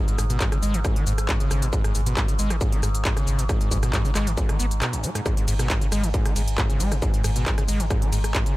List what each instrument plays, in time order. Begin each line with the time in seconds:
Already playing: synth drone G#2
0.08 acid bass G#2, closed hi-hat, shaker
0.18 sub bass G#1, acid bass G#2, cross-stick, open hi-hat, shaker
0.30 sub bass G#1, acid bass B2, closed hi-hat, shaker
0.40 acid bass G#2, kick, clap, closed hi-hat, shaker
0.52 acid bass C#3, cross-stick, closed hi-hat, shaker
0.63 sub bass G#1, acid bass G#3, open hi-hat, shaker
0.74 sub bass G#1, acid bass D#3, closed hi-hat, shaker
0.85 acid bass G#2, kick, cross-stick, closed hi-hat, shaker
0.96 acid bass D#3, closed hi-hat
1.07 sub bass G#1, acid bass G#2, open hi-hat, shaker
1.18 sub bass G#1, cross-stick, closed hi-hat, shaker
1.29 acid bass G#2, kick, clap, closed hi-hat, shaker
1.40 acid bass C#3, closed hi-hat, shaker
1.51 sub bass G#1, cross-stick, open hi-hat, shaker
1.62 sub bass G#1, acid bass B2, closed hi-hat, shaker
1.73 acid bass G#2, kick, closed hi-hat, shaker
1.84 acid bass G#2, cross-stick, closed hi-hat, shaker
1.95 sub bass G#1, acid bass G#2, open hi-hat, shaker
2.06 sub bass G#1, acid bass B2, closed hi-hat, shaker
2.17 acid bass G#2, kick, cross-stick, clap, closed hi-hat, shaker
2.28 acid bass C#3, closed hi-hat, shaker
2.39 sub bass G#1, acid bass G#3, open hi-hat, shaker
2.50 sub bass G#1, acid bass D#3, cross-stick, closed hi-hat, shaker
2.61 acid bass G#2, kick, closed hi-hat, shaker
2.72 acid bass D#3, closed hi-hat
2.83 sub bass G#1, acid bass G#2, cross-stick, open hi-hat, shaker
2.95 sub bass G#1, closed hi-hat, shaker
3.05 acid bass G#2, kick, clap, closed hi-hat, shaker
3.17 acid bass C#3, cross-stick, closed hi-hat, shaker
3.27 sub bass G#1, open hi-hat, shaker
3.39 sub bass G#1, acid bass B2, closed hi-hat, shaker
3.49 acid bass G#2, kick, cross-stick, closed hi-hat, shaker
3.61 acid bass G#2, closed hi-hat, shaker
3.71 sub bass G#1, acid bass G#2, kick, open hi-hat, shaker
3.83 sub bass G#1, acid bass B2, cross-stick, closed hi-hat, shaker
3.93 acid bass G#2, kick, clap, closed hi-hat, shaker
4.05 acid bass C#3, open hi-hat, shaker
4.15 sub bass G#1, acid bass G#3, cross-stick, clap, open hi-hat, shaker
4.27 sub bass G#1, acid bass D#3, closed hi-hat, shaker
4.37 acid bass G#2, kick, closed hi-hat, shaker
4.49 acid bass D#3, cross-stick, closed hi-hat
4.59 sub bass G#1, acid bass B3, open hi-hat, shaker
4.71 sub bass G#1, closed hi-hat, shaker
4.81 acid bass B2, cross-stick, clap, closed hi-hat, shaker
4.93 acid bass G#1, closed hi-hat, shaker
5.03 acid bass G#3, open hi-hat, shaker
5.15 acid bass G#2, cross-stick, closed hi-hat, shaker
5.25 acid bass G#2, synth drone G#2, kick, cross-stick, closed hi-hat, shaker
5.37 acid bass G#2, closed hi-hat, shaker
5.48 sub bass G#1, acid bass G#2, open hi-hat, ride, shaker
5.59 sub bass G#1, acid bass B2, cross-stick, closed hi-hat, shaker
5.70 acid bass G#2, kick, clap, closed hi-hat, shaker
5.81 acid bass C#3, closed hi-hat, shaker
5.92 sub bass G#1, acid bass G#3, cross-stick, open hi-hat, ride, shaker
6.03 sub bass G#1, acid bass D#3, closed hi-hat, shaker
6.14 acid bass G#2, kick, closed hi-hat, shaker
6.25 acid bass D#3, cross-stick, closed hi-hat
6.36 sub bass G#1, acid bass G#2, open hi-hat, ride, shaker
6.48 sub bass G#1, closed hi-hat, shaker
6.58 acid bass G#2, kick, cross-stick, clap, closed hi-hat, shaker
6.69 acid bass C#3, closed hi-hat, shaker
6.80 sub bass G#1, acid bass G#3, open hi-hat, ride, shaker
6.92 sub bass G#1, acid bass B2, cross-stick, closed hi-hat, shaker
7.02 acid bass G#2, kick, closed hi-hat, shaker
7.14 acid bass G#2, closed hi-hat, shaker
7.24 sub bass G#1, acid bass G#2, cross-stick, open hi-hat, ride, shaker
7.36 sub bass G#1, acid bass B2, closed hi-hat, shaker
7.46 acid bass G#2, kick, clap, closed hi-hat, shaker
7.58 acid bass C#3, cross-stick, closed hi-hat, shaker
7.68 sub bass G#1, acid bass G#3, open hi-hat, ride, shaker
7.80 sub bass G#1, acid bass D#3, closed hi-hat, shaker
7.90 acid bass G#2, kick, cross-stick, closed hi-hat, shaker
8.02 acid bass D#3, closed hi-hat
8.12 sub bass G#1, acid bass G#2, open hi-hat, ride, shaker
8.24 sub bass G#1, cross-stick, closed hi-hat, shaker
8.35 acid bass G#2, kick, clap, closed hi-hat, shaker
8.46 acid bass C#3, closed hi-hat, shaker